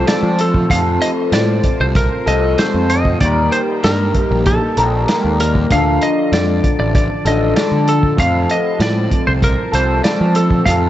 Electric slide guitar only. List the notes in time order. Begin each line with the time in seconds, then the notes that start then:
0.08 D5
0.41 A4
0.71 F5
1.02 D#5
1.33 D5
1.81 C5
1.96 A#4
2.28 D#5
2.59 C5
2.90 D#5
3.21 D5
3.52 C5
3.84 A#4
4.47 A4
5.41 A#4
5.72 F5
6.03 D#5
6.33 D5
6.80 D5
6.95 D5
7.27 D#5
7.57 D5
7.89 A4
8.20 F5
8.51 D#5
8.82 D5
9.27 C5
9.44 A#4
9.75 C5
10.04 D5
10.36 A4
10.65 F5